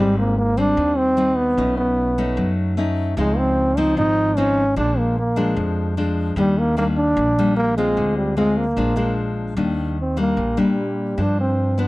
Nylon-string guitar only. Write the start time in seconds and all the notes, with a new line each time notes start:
Already playing: G#2 G3 C4 D#4
0.57 G3 C4
0.78 D#3
1.17 G3 C4 D#4
1.58 B2 A3 C#4 D#4
2.18 A3 C#4 D#4
2.37 F#3
2.77 A3 C#4 D#4
3.17 C#3 F3 C4 D#4
3.77 F3 C4 D#4
3.98 G#2
4.37 F3 C4 D#4
4.76 A#2 F3 G#3 D4
5.36 F3 G#3 D4
5.57 F2
5.97 F3 G#3 D4
6.37 D#3 G3 A#3 D4
6.77 G3 A#3 D4
7.18 A#2
7.39 G3 A#3 D4
7.78 G#3 C4 F4
7.97 D3
8.37 G#3 C4 F4
8.77 A#2 F3 G#3 D4
8.96 F3 G#3 D4
9.57 D#3 G3 A#3 D4
10.17 G3 A#3 D4
10.37 A#2
10.57 G3 A#3 D4
11.17 G2 F3 D4
11.78 F3 B3 D4